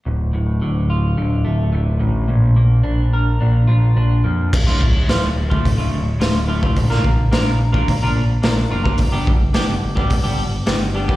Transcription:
<<
  \new Staff \with { instrumentName = "Clean electric guitar" } { \time 4/4 \key d \minor \tempo 4 = 107 d,8 a,8 d8 f'8 d8 a8 d8 a,8 | bes,8 bes8 d'8 bes'8 d'8 f'8 d'8 bes8 | r16 <a, d a f'>16 r8 <a, d a f'>16 r8 <a, d a f'>16 r16 <a, d a f'>16 r8 <a, d a f'>16 r16 <a, d a f'>16 <a, d a f'>16 | r16 <bes d' f' bes'>16 r8 <bes d' f' bes'>16 r8 <bes d' f' bes'>16 r16 <bes d' f' bes'>16 r8 <bes d' f' bes'>16 r16 <bes d' f' bes'>16 <bes d' f' bes'>16 |
r16 <g b d' g'>16 r8 <g b d' g'>16 r8 <g b d' g'>16 r16 <g b d' g'>16 r8 <g b d' g'>16 r16 <g b d' g'>16 <g b d' g'>16 | }
  \new Staff \with { instrumentName = "Picked electric bass" } { \clef bass \time 4/4 \key d \minor d,,8 d,,8 d,,4 d,,8 d,,8 d,,8 a,,8 | bes,,8 bes,,8 bes,,4 bes,,8 bes,,8 bes,,8 f,8 | d,,8 d,,8 d,,8 d,,8 d,,8 d,,8 d,,4 | bes,,8 bes,,8 bes,,4 bes,,8 bes,,8 bes,,8 fis,,8 |
g,,8 g,,8 g,,8 g,,8 g,,8 g,,8 g,,4 | }
  \new DrumStaff \with { instrumentName = "Drums" } \drummode { \time 4/4 r4 r4 r4 r4 | r4 r4 r4 r4 | <cymc bd>8 bd8 <hho sn>8. bd16 <hho bd>4 <hho sn>8. bd16 | <hho bd>16 sn16 bd8 <hho sn>8. bd16 <hho bd>4 <hho sn>8. bd16 |
<hho bd>8 bd8 <hho sn>8. bd16 <hho bd>4 <hho sn>8. bd16 | }
>>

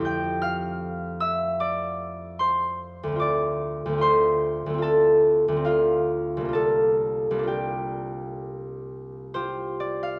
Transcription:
<<
  \new Staff \with { instrumentName = "Harp" } { \time 4/4 \key f \major \tempo 4 = 74 << { <c''' f''' g''' a'''>8 f'''4 e'''8 d'''4 c'''4 | d'''4 c'''4 a''4 f''4 | a''4 g''2 c''8 d''16 f''16 | } \\ { <c'' f'' g'' a''>8 f''4 e''8 d''4 c''4 | d''4 c''4 a'4 f'4 | a'4 g'2 <f' g'>4 | } >> }
  \new Staff \with { instrumentName = "Harp" } { \time 4/4 \key f \major <f, f a c' g'>1 | <d, a c' f'>4 <d, a c' f'>4 <d, a c' f'>4 <d, a c'>4 | <c, bes d' f'>4 <c, bes d' f'>2. | }
>>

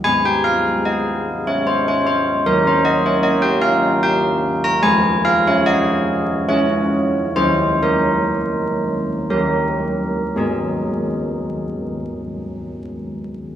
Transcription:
\new Staff \with { instrumentName = "Church bells" } { \time 3/4 \key aes \major \tempo 4 = 72 << { aes''16 g''16 f''8 ees''8. des''16 c''16 des''16 c''8 | bes'16 c''16 ees''16 des''16 ees''16 g''16 f''8 g''8. bes''16 | aes''8 f''16 des''16 ees''4 des''4 | c''8 bes'4. bes'4 |
<aes ees' aes'>2. | } \\ { <aes c' aes'>2. | <ees des'>2. | <f c' aes'>2 <des' aes'>4 | <ees des' aes'>2 <ees des' g'>4 |
r2. | } >> }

